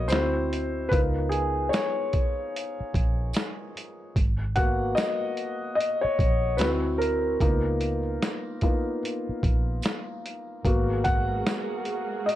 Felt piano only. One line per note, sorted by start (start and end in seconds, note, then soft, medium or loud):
0.00 0.13 A#3 soft
0.00 0.12 B3 soft
0.00 0.12 F#4 medium
0.00 0.12 B4 medium
0.00 0.12 C#5 loud
0.00 0.12 D#5 loud
0.08 0.88 C4 medium
0.08 0.88 E4 soft
0.08 0.88 F#4 medium
0.08 0.86 C5 loud
0.89 4.12 B3 medium
0.89 4.12 D#4 medium
0.89 4.12 F4 medium
0.89 4.12 A#4 medium
0.89 0.98 B4 loud
1.30 1.39 G#4 medium
1.69 3.70 C#5 medium
4.56 5.14 A#3 medium
4.56 5.15 B3 soft
4.56 5.15 F#4 medium
4.56 4.65 F#5 loud
4.95 5.73 D#5 loud
5.75 5.81 D#5 medium
6.01 6.60 C#5 medium
6.57 7.36 C4 medium
6.57 7.37 E4 soft
6.57 7.37 F#4 medium
6.57 6.66 B4 medium
6.98 7.76 A#4 medium
7.41 7.99 A#3 medium
7.41 7.99 B3 medium
7.41 7.99 D#4 soft
7.41 7.99 F4 medium
8.62 8.99 A#3 soft
8.62 8.99 B3 soft
8.62 8.99 D#4 soft
8.62 8.99 F4 medium
10.65 12.35 A#3 medium
10.65 12.35 B3 soft
10.65 12.35 F#4 medium
11.04 11.82 F#5 loud
12.26 12.35 D#5 medium